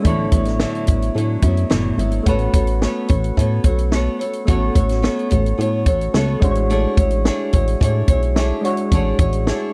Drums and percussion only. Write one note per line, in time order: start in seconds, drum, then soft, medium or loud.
0.05 kick medium
0.05 closed hi-hat medium
0.32 kick medium
0.32 closed hi-hat medium
0.45 snare soft
0.45 closed hi-hat soft
0.60 snare medium
0.75 closed hi-hat soft
0.87 kick medium
0.87 closed hi-hat medium
1.02 closed hi-hat soft
1.18 closed hi-hat medium
1.42 kick medium
1.42 closed hi-hat medium
1.57 closed hi-hat soft
1.71 snare loud
1.99 closed hi-hat medium
2.11 closed hi-hat soft
2.26 kick medium
2.26 closed hi-hat medium
2.39 closed hi-hat soft
2.54 kick medium
2.54 closed hi-hat medium
2.67 closed hi-hat soft
2.82 snare medium
3.08 kick medium
3.08 closed hi-hat medium
3.24 closed hi-hat soft
3.37 kick medium
3.37 closed hi-hat medium
3.64 kick medium
3.64 closed hi-hat medium
3.78 closed hi-hat soft
3.92 snare medium
4.21 closed hi-hat medium
4.33 closed hi-hat soft
4.48 kick medium
4.48 closed hi-hat medium
4.75 kick medium
4.75 closed hi-hat medium
4.89 snare soft
4.89 closed hi-hat soft
5.04 snare medium
5.19 closed hi-hat soft
5.31 kick medium
5.31 closed hi-hat medium
5.46 closed hi-hat soft
5.61 closed hi-hat medium
5.86 kick medium
5.86 closed hi-hat medium
6.01 closed hi-hat soft
6.14 snare loud
6.42 kick loud
6.42 closed hi-hat medium
6.55 closed hi-hat soft
6.70 closed hi-hat medium
6.97 kick medium
6.97 closed hi-hat medium
7.11 closed hi-hat soft
7.25 snare loud
7.53 kick medium
7.53 closed hi-hat medium
7.68 closed hi-hat soft
7.81 kick medium
7.81 closed hi-hat medium
8.08 kick medium
8.08 closed hi-hat medium
8.23 closed hi-hat soft
8.36 snare medium
8.65 closed hi-hat medium
8.77 closed hi-hat soft
8.92 kick medium
8.92 closed hi-hat medium
9.19 kick loud
9.19 closed hi-hat medium
9.33 closed hi-hat soft
9.47 snare medium